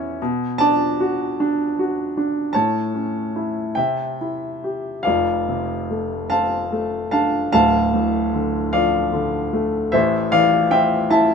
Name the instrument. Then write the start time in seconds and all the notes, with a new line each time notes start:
grand piano
Already playing: E2 C#4 E4 C#5
0.22 B2
0.58 D4 D5 A5
1.00 F#4
1.40 D4
1.79 F#4
2.17 D4
2.53 A2 C#5 A5
2.94 C#4
3.36 E4
3.75 C3 E5 G5
4.21 E4
4.64 G4
5.03 F1 F2 D5 F5
5.49 C3
5.91 A3
6.30 C4 F5 A5
6.72 A3
7.11 D4 F5 A5
7.52 D1 D2 F5 A5
7.94 A2
8.34 D3
8.73 F3 D5 F5
9.13 D3
9.53 A3
9.92 A1 A2 C5 E5
10.32 E3 D5 F5
10.71 C4 E5 G5
11.11 E4 E5 A5